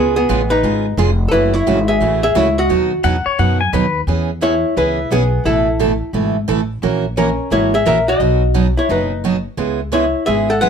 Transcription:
Already playing: C#2 C#3 G#3 B3 F4 G#4
0.16 B3 G#4
0.29 A1 C#3 G#3 B3 F4 G#4
0.50 D#4 B4
0.63 G#1 C#3 G#3 B3 F4 G#4
0.97 F1 C#3 G#3 B3 F4 G#4
1.28 E4 A4 B4
1.32 F#1 C#3 E3 A3 C#4 F#4
1.53 E4 C#5
1.67 G#1 C#3 E3 A3 C#4 F#4
1.88 G#4 E5
2.01 A1 C#3 E3 A3 C#4 F#4
2.23 G#4 E5
2.35 C#2 C#3 E3 A3 C#4 E4 F#4 C#5
2.58 F#4 D#5
2.69 D#2 B2 F#3 B3 D#4 F#4
3.03 E2 B2 F#3 B3 D#4 F#4 F#5
3.26 C#5, muted upright bass stroke
3.39 F#2 B2 F#3 B3 D#4 F#4 F#5
3.61 G#5
3.73 D#2 B2 F#3 B3 D#4 F#4 B4
4.07 E2 E3 B3 C#4 G#4
4.41 E3 B3 C#4 E4 G#4 C#5
4.76 C#2 E3 B3 C#4 E4 G#4 B4
5.11 B1 E3 B3 C#4 G#4
5.45 A1 B2 E3 A3 E4 A4
5.79 B2 E3 A3 E4 A4
6.13 G#1 B2 E3 A3 E4 A4
6.48 A1 B2 E3 A3 E4 A4
6.82 A#1 E3 A#3 C#4 F#4 A#4
7.17 E3 A#3 C#4 F#4 A#4
7.51 G#1 E3 A#3 C#4 E4 F#4 A#4 C#5
7.74 G#4 E5
7.85 A#1 E3 A#3 C#4 F#4 A#4 E5
8.08 F#4 D#5
8.20 B1 B2 F#3 B3 D#4 F#4
8.54 B2 F#3 B3 D#4 F#4
8.62 C#5
8.77 E4 C#5
8.89 F#1 B2 F#3 B3 D#4 F#4 B4
9.24 B2 F#3 B3 D#4 F#4
9.57 C#2 C#3 G#3 B3 E4 G#4
9.92 C#3 G#3 B3 E4 G#4 C#5
10.26 G#1 C#3 G#3 B3 E4 G#4 E5
10.50 A4 F#5
10.61 C#3 G#3 B3 E4 G#4 B4 F#5

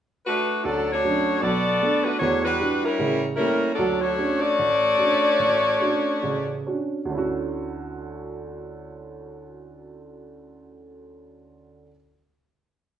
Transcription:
0.26 A3 D4 F#4 B4
0.64 D2 F#3 C#4 D4 A4
0.91 A3 D4 F#4 C#5
1.04 F#3 C#4 D4
1.41 B1 B3 F#4 A4 D5
1.82 A3 B3 D4
2.04 A3 D4 F#4 B4
2.18 E2 E3 A3 D4 F#4 C#5
2.44 G3 D4 F#4 B4
2.59 G3 D4 E4 F#4
2.85 G3 C#4 E4 A#4
2.99 A1 C#3
3.36 G3 A3 A#3 C#4 E4 G4 A#4
3.74 F#3 C#4 D4 A4
3.79 D2 F#3
4.00 A3 D4 F#4 C#5
4.18 C#4 D4 F#4
4.40 A3 F#4 C#5 D5
4.59 A1
4.97 C#4 D4 F#4
5.39 A1
5.80 C#4 D4 F#4
6.23 A1 C#3
6.66 C#4 D4 F#4
7.05 D2 D3
7.11 C#4 E4
7.18 F#4

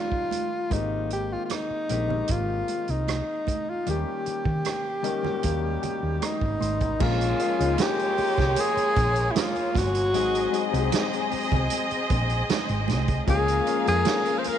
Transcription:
Already playing: D#3 G3 A#3 C#4 D#4 F4 G4 A#4
0.12 kick
0.31 closed hi-hat, high conga
0.70 G#1 D#3 G#3 A#3 C4 D#4 G4, kick, closed hi-hat, muted conga
1.10 G4, closed hi-hat
1.33 F4
1.45 F4
1.49 cross-stick, closed hi-hat, high conga
1.54 D#4
1.70 muted fingered electric bass stroke
1.89 A#1 D#3 G#3 A#3 C4 G4, closed hi-hat, muted conga
2.08 D#3 G#3 A#3 C4 G4, low conga
2.28 G#1, kick, closed hi-hat, muted conga
2.32 F4
2.68 closed hi-hat, muted conga
2.88 C2 D#4, closed hi-hat
3.08 cross-stick, closed hi-hat, high conga
3.47 kick, closed hi-hat, high conga
3.70 F4
3.86 D#2 D#3 G3 A#3 C#4 G4, closed hi-hat, muted conga
3.91 G4
4.26 muted fingered electric bass stroke, closed hi-hat
4.45 D#3, kick
4.65 cross-stick, closed hi-hat, high conga
5.03 D#3 G3 A#3 C#4 A#4 D#5, closed hi-hat
5.23 D#3 F#3 A#3 C#4 D#4, cross-stick, low conga
5.30 G3
5.43 D#2 F5, kick, closed hi-hat, muted conga
5.82 G5, muted fingered electric bass stroke, closed hi-hat, muted conga, low conga
6.03 D#2
6.22 D#4 A#5, cross-stick, closed hi-hat, high conga
6.41 G#1, kick
6.60 G#1 C6, cross-stick, closed hi-hat, high conga
6.80 A1, kick, closed hi-hat
6.99 A#1 F3 G#3 A#3 C#4 F4 G#4 C#5, kick, crash, muted conga
7.21 closed hi-hat
7.39 F3 G#3 A#3 C#4 G#4, closed hi-hat
7.59 C#2 F3 G#3 A#3 C#4 D#4, closed hi-hat
7.78 snare, closed hi-hat, high conga
7.82 G4
7.99 closed hi-hat
8.18 muted fingered electric bass stroke, open hi-hat, muted conga
8.38 C2, kick, snare, closed hi-hat, low conga
8.56 G#4, closed hi-hat, muted conga
8.77 muted fingered electric bass stroke, closed hi-hat
8.96 A#1, kick, closed hi-hat, muted conga
9.16 closed hi-hat
9.31 E4
9.36 F4, snare, closed hi-hat, high conga
9.56 closed hi-hat, high conga
9.75 G1 F#4, kick, snare, closed hi-hat, high conga
9.95 closed hi-hat
10.13 G#1 F#3 G#3 C4 D#4 G#4 D#5, closed hi-hat, muted conga
10.35 closed hi-hat
10.52 F#3 G#3 C4 D#4 G#4, closed hi-hat
10.72 C2 F#3 G#3 C4 D#4 G4, closed hi-hat
10.80 G#4
10.92 snare, closed hi-hat, high conga
11.13 closed hi-hat
11.31 muted fingered electric bass stroke, open hi-hat, muted conga
11.52 C2, kick, closed hi-hat, low conga
11.70 closed hi-hat, muted conga
11.91 muted fingered electric bass stroke, closed hi-hat
12.10 A#1, kick, closed hi-hat, muted conga
12.29 closed hi-hat
12.49 snare, closed hi-hat, high conga
12.69 G#1, closed hi-hat, high conga
12.88 C2, snare, closed hi-hat, high conga
13.08 kick, closed hi-hat
13.27 C#2 F3 G#3 A#3 C#4 G#4 A#4 F5, kick, closed hi-hat, muted conga
13.48 closed hi-hat
13.65 F3 G#3 A#3 C#4 A#4, closed hi-hat
13.85 F2 F3 G#3 A#3 C#4 G#4 A4, closed hi-hat
13.94 A#4
14.05 snare, closed hi-hat, high conga
14.25 closed hi-hat
14.39 C5
14.44 A#4, muted fingered electric bass stroke, closed hi-hat, muted conga

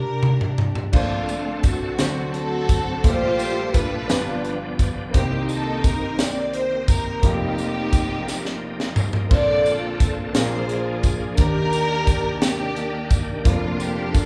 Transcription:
Already playing: D4 G4 A#4
0.23 mid tom
0.41 floor tom
0.58 floor tom
0.75 floor tom
0.92 A#1 A#2 D3 A3 C4 D4 F4 A4 C5 D5 F5, kick, crash
1.29 closed hi-hat, tambourine
1.63 A3 C4 F#4, kick, closed hi-hat, tambourine
1.98 D2 D3 F#3 C4 D4 F#4 A4 C5, snare, closed hi-hat, tambourine
2.34 C4 F#4 A4, closed hi-hat
2.69 kick, closed hi-hat, tambourine
3.03 A#1 A#2 G3 A3 D4 F4 G4 A4 C5, kick, closed hi-hat
3.09 A3
3.39 closed hi-hat, tambourine
3.74 D4 F4 B4, kick, closed hi-hat, tambourine
4.08 G1 G2 F3 B3 D4 F4 G4 B4, snare, closed hi-hat, tambourine
4.45 closed hi-hat
4.79 kick, closed hi-hat, tambourine
5.10 C2 C3 D#3 A#3 C4 D#4, closed hi-hat
5.14 A#3 D#4 G4 C5, kick
5.49 A4, closed hi-hat, tambourine
5.84 A#4, kick, closed hi-hat, tambourine
6.19 D5, snare, closed hi-hat, tambourine
6.53 C5, closed hi-hat
6.88 A#4, kick, closed hi-hat, tambourine
7.20 F1 F2 F3 A#3 C4 D#4, kick, closed hi-hat
7.24 A#3 D#4 F4 G4
7.58 closed hi-hat, tambourine
7.93 kick, closed hi-hat, tambourine
8.28 snare, tambourine
8.45 snare
8.80 snare
8.96 floor tom, tambourine
9.13 floor tom
9.29 A#1 A#2 D3 A#3 C4 D4 F4 A4 D5, kick, crash
9.66 closed hi-hat, tambourine
10.00 kick, closed hi-hat, tambourine
10.33 A#1 A#2 F3 A#3 D4 F4 G#4 A#4 C5, snare, closed hi-hat, tambourine
10.69 closed hi-hat
11.03 kick, closed hi-hat, tambourine
11.35 D#2 D#3 A#3 D4 G4 A#4, kick, closed hi-hat
11.39 D#3 G4 A#4
11.73 closed hi-hat, tambourine
12.07 kick, closed hi-hat, tambourine
12.42 A#3 D4 G4, snare, closed hi-hat, tambourine
12.76 closed hi-hat
13.10 kick, closed hi-hat, tambourine
13.44 F1 F2 D3 F3 A#3 D4 F4 D5, kick, closed hi-hat
13.80 G4, closed hi-hat, tambourine
14.14 A4, kick, closed hi-hat, tambourine

